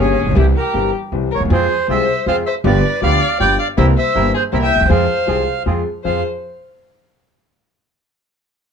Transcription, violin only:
0, 0, Header, 1, 2, 480
1, 0, Start_track
1, 0, Key_signature, -4, "minor"
1, 0, Tempo, 379027
1, 461, Time_signature, 3, 2, 24, 8
1, 11043, End_track
2, 0, Start_track
2, 0, Title_t, "Violin"
2, 0, Program_c, 0, 40
2, 0, Note_on_c, 0, 61, 74
2, 430, Note_off_c, 0, 61, 0
2, 465, Note_on_c, 0, 64, 64
2, 572, Note_off_c, 0, 64, 0
2, 704, Note_on_c, 0, 67, 73
2, 1150, Note_off_c, 0, 67, 0
2, 1665, Note_on_c, 0, 70, 69
2, 1774, Note_off_c, 0, 70, 0
2, 1919, Note_on_c, 0, 68, 63
2, 2363, Note_off_c, 0, 68, 0
2, 2396, Note_on_c, 0, 72, 83
2, 2841, Note_off_c, 0, 72, 0
2, 2885, Note_on_c, 0, 72, 80
2, 2990, Note_off_c, 0, 72, 0
2, 3121, Note_on_c, 0, 72, 87
2, 3227, Note_off_c, 0, 72, 0
2, 3367, Note_on_c, 0, 71, 81
2, 3804, Note_off_c, 0, 71, 0
2, 3838, Note_on_c, 0, 74, 96
2, 4278, Note_off_c, 0, 74, 0
2, 4309, Note_on_c, 0, 74, 88
2, 4529, Note_off_c, 0, 74, 0
2, 4544, Note_on_c, 0, 74, 87
2, 4650, Note_off_c, 0, 74, 0
2, 4783, Note_on_c, 0, 72, 78
2, 4888, Note_off_c, 0, 72, 0
2, 5018, Note_on_c, 0, 72, 82
2, 5458, Note_off_c, 0, 72, 0
2, 5499, Note_on_c, 0, 68, 70
2, 5604, Note_off_c, 0, 68, 0
2, 5725, Note_on_c, 0, 72, 84
2, 5778, Note_off_c, 0, 72, 0
2, 5841, Note_on_c, 0, 76, 91
2, 6172, Note_off_c, 0, 76, 0
2, 6188, Note_on_c, 0, 72, 77
2, 7111, Note_off_c, 0, 72, 0
2, 7646, Note_on_c, 0, 72, 64
2, 7876, Note_off_c, 0, 72, 0
2, 11043, End_track
0, 0, End_of_file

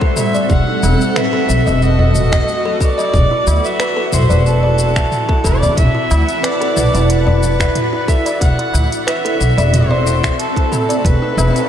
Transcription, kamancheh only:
0, 0, Header, 1, 2, 480
1, 0, Start_track
1, 0, Tempo, 659341
1, 364, Time_signature, 4, 2, 24, 8
1, 8510, End_track
2, 0, Start_track
2, 0, Title_t, "Kamancheh"
2, 0, Program_c, 0, 110
2, 0, Note_on_c, 0, 72, 99
2, 124, Note_off_c, 0, 72, 0
2, 128, Note_on_c, 0, 76, 105
2, 350, Note_off_c, 0, 76, 0
2, 370, Note_on_c, 0, 78, 112
2, 852, Note_on_c, 0, 76, 107
2, 863, Note_off_c, 0, 78, 0
2, 1332, Note_on_c, 0, 75, 101
2, 1343, Note_off_c, 0, 76, 0
2, 2057, Note_on_c, 0, 74, 112
2, 2068, Note_off_c, 0, 75, 0
2, 2657, Note_on_c, 0, 76, 104
2, 2667, Note_off_c, 0, 74, 0
2, 3012, Note_on_c, 0, 72, 93
2, 3023, Note_off_c, 0, 76, 0
2, 3248, Note_off_c, 0, 72, 0
2, 3252, Note_on_c, 0, 69, 94
2, 3969, Note_on_c, 0, 74, 97
2, 3980, Note_off_c, 0, 69, 0
2, 4201, Note_off_c, 0, 74, 0
2, 4205, Note_on_c, 0, 76, 103
2, 4688, Note_on_c, 0, 74, 107
2, 4699, Note_off_c, 0, 76, 0
2, 5169, Note_on_c, 0, 71, 97
2, 5180, Note_off_c, 0, 74, 0
2, 5887, Note_on_c, 0, 76, 98
2, 5898, Note_off_c, 0, 71, 0
2, 6122, Note_off_c, 0, 76, 0
2, 6127, Note_on_c, 0, 78, 103
2, 6576, Note_off_c, 0, 78, 0
2, 6608, Note_on_c, 0, 76, 99
2, 7084, Note_on_c, 0, 72, 95
2, 7095, Note_off_c, 0, 76, 0
2, 7564, Note_off_c, 0, 72, 0
2, 7567, Note_on_c, 0, 69, 86
2, 8047, Note_on_c, 0, 71, 96
2, 8057, Note_off_c, 0, 69, 0
2, 8510, Note_off_c, 0, 71, 0
2, 8510, End_track
0, 0, End_of_file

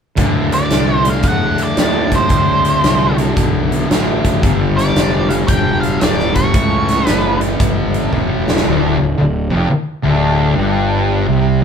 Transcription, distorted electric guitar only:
0, 0, Header, 1, 3, 480
1, 0, Start_track
1, 0, Tempo, 530035
1, 153, Time_signature, 4, 2, 24, 8
1, 10544, End_track
2, 0, Start_track
2, 0, Title_t, "Distorted electric guitar"
2, 0, Program_c, 0, 30
2, 152, Note_on_c, 0, 38, 68
2, 162, Note_on_c, 0, 45, 81
2, 172, Note_on_c, 0, 50, 86
2, 937, Note_off_c, 0, 45, 0
2, 951, Note_off_c, 0, 50, 0
2, 955, Note_on_c, 0, 50, 68
2, 967, Note_on_c, 0, 45, 58
2, 973, Note_off_c, 0, 38, 0
2, 977, Note_on_c, 0, 38, 60
2, 1594, Note_off_c, 0, 50, 0
2, 1599, Note_off_c, 0, 38, 0
2, 1600, Note_off_c, 0, 45, 0
2, 1610, Note_on_c, 0, 38, 68
2, 1618, Note_on_c, 0, 45, 65
2, 1626, Note_on_c, 0, 50, 71
2, 2072, Note_off_c, 0, 38, 0
2, 2083, Note_off_c, 0, 45, 0
2, 2083, Note_on_c, 0, 38, 68
2, 2087, Note_off_c, 0, 50, 0
2, 2092, Note_on_c, 0, 45, 81
2, 2102, Note_on_c, 0, 50, 88
2, 2861, Note_off_c, 0, 38, 0
2, 2866, Note_off_c, 0, 45, 0
2, 2871, Note_off_c, 0, 50, 0
2, 2883, Note_on_c, 0, 50, 74
2, 2896, Note_on_c, 0, 45, 69
2, 2903, Note_on_c, 0, 38, 61
2, 3515, Note_off_c, 0, 38, 0
2, 3522, Note_off_c, 0, 50, 0
2, 3526, Note_on_c, 0, 38, 70
2, 3528, Note_off_c, 0, 45, 0
2, 3538, Note_on_c, 0, 45, 65
2, 3546, Note_on_c, 0, 50, 81
2, 3999, Note_off_c, 0, 38, 0
2, 4005, Note_off_c, 0, 45, 0
2, 4010, Note_off_c, 0, 50, 0
2, 4010, Note_on_c, 0, 43, 75
2, 4022, Note_on_c, 0, 50, 84
2, 4031, Note_on_c, 0, 55, 87
2, 4786, Note_off_c, 0, 43, 0
2, 4792, Note_off_c, 0, 50, 0
2, 4798, Note_off_c, 0, 55, 0
2, 4802, Note_on_c, 0, 55, 74
2, 4816, Note_on_c, 0, 50, 67
2, 4826, Note_on_c, 0, 43, 54
2, 5437, Note_off_c, 0, 43, 0
2, 5441, Note_off_c, 0, 55, 0
2, 5448, Note_on_c, 0, 43, 68
2, 5449, Note_off_c, 0, 50, 0
2, 5458, Note_on_c, 0, 50, 69
2, 5466, Note_on_c, 0, 55, 73
2, 5910, Note_off_c, 0, 43, 0
2, 5914, Note_on_c, 0, 45, 79
2, 5922, Note_off_c, 0, 50, 0
2, 5926, Note_on_c, 0, 52, 94
2, 5930, Note_off_c, 0, 55, 0
2, 5934, Note_on_c, 0, 57, 90
2, 6693, Note_off_c, 0, 57, 0
2, 6696, Note_off_c, 0, 45, 0
2, 6702, Note_off_c, 0, 52, 0
2, 6704, Note_on_c, 0, 57, 70
2, 6718, Note_on_c, 0, 52, 70
2, 6725, Note_on_c, 0, 45, 66
2, 7345, Note_off_c, 0, 45, 0
2, 7350, Note_off_c, 0, 57, 0
2, 7355, Note_off_c, 0, 52, 0
2, 7356, Note_on_c, 0, 45, 66
2, 7366, Note_on_c, 0, 52, 78
2, 7372, Note_on_c, 0, 57, 73
2, 7831, Note_off_c, 0, 45, 0
2, 7836, Note_off_c, 0, 52, 0
2, 7839, Note_off_c, 0, 57, 0
2, 7840, Note_on_c, 0, 38, 97
2, 8133, Note_off_c, 0, 38, 0
2, 8144, Note_on_c, 0, 38, 67
2, 8285, Note_off_c, 0, 38, 0
2, 8315, Note_on_c, 0, 38, 66
2, 8569, Note_off_c, 0, 38, 0
2, 8611, Note_on_c, 0, 41, 90
2, 8781, Note_off_c, 0, 41, 0
2, 9085, Note_on_c, 0, 38, 89
2, 9558, Note_off_c, 0, 38, 0
2, 9562, Note_on_c, 0, 43, 87
2, 10212, Note_off_c, 0, 43, 0
2, 10216, Note_on_c, 0, 48, 93
2, 10522, Note_off_c, 0, 48, 0
2, 10544, End_track
3, 0, Start_track
3, 0, Title_t, "Muted distorted electric guitar strokes"
3, 8785, Note_on_c, 9, 29, 46
3, 8876, Note_off_c, 9, 29, 0
3, 10544, End_track
0, 0, End_of_file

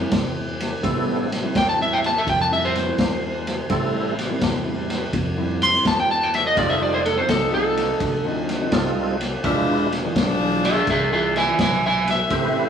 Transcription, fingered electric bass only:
0, 0, Header, 1, 2, 480
1, 0, Start_track
1, 0, Key_signature, 0, "minor"
1, 0, Tempo, 716846
1, 559, Time_signature, 4, 2, 24, 8
1, 8498, End_track
2, 0, Start_track
2, 0, Title_t, "Fingered electric bass"
2, 0, Program_c, 0, 33
2, 78, Note_on_c, 0, 40, 89
2, 499, Note_off_c, 0, 40, 0
2, 559, Note_on_c, 0, 33, 96
2, 980, Note_off_c, 0, 33, 0
2, 1041, Note_on_c, 0, 40, 94
2, 1461, Note_off_c, 0, 40, 0
2, 1520, Note_on_c, 0, 41, 93
2, 1941, Note_off_c, 0, 41, 0
2, 1998, Note_on_c, 0, 40, 92
2, 2419, Note_off_c, 0, 40, 0
2, 2477, Note_on_c, 0, 33, 91
2, 2899, Note_off_c, 0, 33, 0
2, 2958, Note_on_c, 0, 40, 92
2, 3380, Note_off_c, 0, 40, 0
2, 3436, Note_on_c, 0, 41, 85
2, 3859, Note_off_c, 0, 41, 0
2, 3918, Note_on_c, 0, 40, 88
2, 4397, Note_on_c, 0, 29, 95
2, 4408, Note_off_c, 0, 40, 0
2, 4820, Note_off_c, 0, 29, 0
2, 4881, Note_on_c, 0, 36, 91
2, 5301, Note_off_c, 0, 36, 0
2, 5359, Note_on_c, 0, 38, 89
2, 5780, Note_off_c, 0, 38, 0
2, 5840, Note_on_c, 0, 36, 90
2, 6260, Note_off_c, 0, 36, 0
2, 6322, Note_on_c, 0, 28, 93
2, 6742, Note_off_c, 0, 28, 0
2, 6801, Note_on_c, 0, 35, 93
2, 7221, Note_off_c, 0, 35, 0
2, 7279, Note_on_c, 0, 36, 95
2, 7700, Note_off_c, 0, 36, 0
2, 7760, Note_on_c, 0, 35, 92
2, 8180, Note_off_c, 0, 35, 0
2, 8242, Note_on_c, 0, 33, 94
2, 8498, Note_off_c, 0, 33, 0
2, 8498, End_track
0, 0, End_of_file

